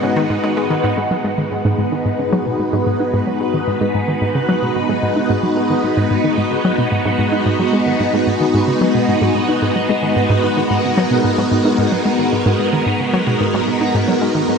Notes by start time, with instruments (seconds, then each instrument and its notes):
Already playing: string machine G#3 B3 D#4 F#4 B4, synth texture F#5
0.03 synth arpeggio sound C#3
0.16 synth arpeggio sound D#3
0.30 synth arpeggio sound G#2
0.43 synth arpeggio sound G#3
0.57 synth arpeggio sound G#3
0.70 synth arpeggio sound D#3
0.84 synth arpeggio sound G#2
0.97 synth arpeggio sound G#2, string machine G#3
1.11 synth arpeggio sound F#3
1.24 synth arpeggio sound G#3
1.38 synth arpeggio sound D#3
1.44 string machine B3
1.52 synth arpeggio sound G#2
1.60 string machine D#4
1.65 synth arpeggio sound G#2
1.75 synth arpeggio sound G#2, string machine B4
1.92 synth arpeggio sound D#3
2.06 synth arpeggio sound G#2
2.12 string machine F#4
2.19 synth arpeggio sound C#3
2.33 synth arpeggio sound F#3
2.46 synth arpeggio sound B2
2.60 synth arpeggio sound G#2
2.73 synth arpeggio sound G#2
2.87 synth arpeggio sound G#2
3.00 synth arpeggio sound D#4
3.14 synth arpeggio sound G#2
3.27 synth arpeggio sound F#3
3.40 synth arpeggio sound G#3
3.54 synth arpeggio sound D#3
3.68 synth arpeggio sound G#2
3.81 synth arpeggio sound G#2
3.94 synth arpeggio sound G#2
4.08 synth arpeggio sound D#3
4.22 synth arpeggio sound G#2
4.35 synth arpeggio sound C#3
4.49 synth arpeggio sound F#3
4.62 synth arpeggio sound B2
4.76 synth arpeggio sound G#2
4.89 synth arpeggio sound G#2
5.03 synth arpeggio sound G#2
5.16 synth arpeggio sound D#4
5.30 synth arpeggio sound G#2
5.43 synth arpeggio sound F#3
5.57 synth arpeggio sound G#3
5.70 synth arpeggio sound D#3
5.84 synth arpeggio sound G#2
5.97 synth arpeggio sound G#2
6.11 synth arpeggio sound G#2
6.24 synth arpeggio sound D#3
6.38 synth arpeggio sound G#2
6.51 synth arpeggio sound C#3
6.65 synth arpeggio sound F#3
6.78 synth arpeggio sound B2
6.92 synth arpeggio sound G#2
7.05 synth arpeggio sound G#2
7.19 synth arpeggio sound G#2
7.32 synth arpeggio sound D#4
7.46 synth arpeggio sound G#2
7.59 synth arpeggio sound F#3
7.73 synth arpeggio sound G#3
7.87 synth arpeggio sound D#3
8.00 synth arpeggio sound G#2
8.14 synth arpeggio sound G#2
8.27 synth arpeggio sound G#2
8.41 synth arpeggio sound D#3
8.54 synth arpeggio sound G#2
8.68 synth arpeggio sound C#3
8.81 synth arpeggio sound F#3
8.95 synth arpeggio sound B2
9.08 synth arpeggio sound G#2
9.22 synth arpeggio sound G#2
9.35 synth arpeggio sound G#2
9.49 synth arpeggio sound D#4
9.62 synth arpeggio sound G#2
9.76 synth arpeggio sound F#3
9.89 synth arpeggio sound G#3
10.03 synth arpeggio sound D#3
10.16 synth arpeggio sound G#2
10.30 synth arpeggio sound G#2
10.43 synth arpeggio sound G#2
10.57 synth arpeggio sound D#3
10.62 string machine A#4
10.70 synth arpeggio sound G#2
10.84 synth arpeggio sound C#3
10.97 synth arpeggio sound F#3
11.11 synth arpeggio sound B2
11.24 synth arpeggio sound G#2
11.38 synth arpeggio sound G#2
11.51 synth arpeggio sound G#2
11.65 synth arpeggio sound D#4
11.78 synth arpeggio sound G#2
11.92 synth arpeggio sound F#3
12.06 synth arpeggio sound G#3
12.19 synth arpeggio sound D#3
12.32 synth arpeggio sound G#2
12.46 synth arpeggio sound G#2
12.60 synth arpeggio sound G#2
12.73 synth arpeggio sound D#3
12.86 synth arpeggio sound G#2
13.00 synth arpeggio sound C#3
13.14 synth arpeggio sound F#3
13.27 synth arpeggio sound B2
13.41 synth arpeggio sound G#2
13.54 synth arpeggio sound G#2
13.68 synth arpeggio sound G#2
13.81 synth arpeggio sound D#4
13.95 synth arpeggio sound G#2
14.08 synth arpeggio sound F#3
14.21 synth arpeggio sound G#3
14.35 synth arpeggio sound D#3
14.49 synth arpeggio sound G#2